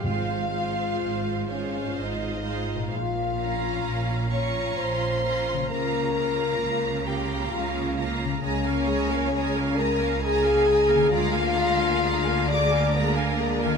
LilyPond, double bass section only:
\new Staff \with { instrumentName = "Double bass section" } { \clef bass \time 3/4 \key bes \dorian \tempo 4 = 66 aes,,4 aes,,4 aes,,4 | bes,,4 bes,,4 bes,,4 | des,4 des,4 des,4 | des,2. |
d,2. | }